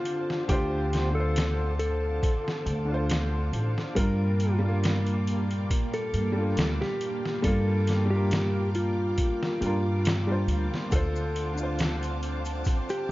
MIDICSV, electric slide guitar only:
0, 0, Header, 1, 2, 480
1, 0, Start_track
1, 0, Key_signature, -1, "minor"
1, 0, Tempo, 869565
1, 269, Time_signature, 4, 2, 24, 8
1, 7241, End_track
2, 0, Start_track
2, 0, Title_t, "Electric slide guitar"
2, 0, Program_c, 0, 29
2, 0, Note_on_c, 0, 65, 80
2, 237, Note_off_c, 0, 65, 0
2, 273, Note_on_c, 0, 67, 99
2, 599, Note_off_c, 0, 67, 0
2, 634, Note_on_c, 0, 69, 89
2, 954, Note_off_c, 0, 69, 0
2, 990, Note_on_c, 0, 69, 93
2, 2099, Note_off_c, 0, 69, 0
2, 2188, Note_on_c, 0, 70, 99
2, 2517, Note_off_c, 0, 70, 0
2, 3277, Note_on_c, 0, 69, 91
2, 3706, Note_off_c, 0, 69, 0
2, 3761, Note_on_c, 0, 67, 90
2, 4078, Note_off_c, 0, 67, 0
2, 4110, Note_on_c, 0, 69, 94
2, 4438, Note_off_c, 0, 69, 0
2, 4474, Note_on_c, 0, 67, 90
2, 4794, Note_off_c, 0, 67, 0
2, 4832, Note_on_c, 0, 65, 87
2, 5940, Note_off_c, 0, 65, 0
2, 6031, Note_on_c, 0, 69, 97
2, 6358, Note_off_c, 0, 69, 0
2, 7121, Note_on_c, 0, 67, 85
2, 7241, Note_off_c, 0, 67, 0
2, 7241, End_track
0, 0, End_of_file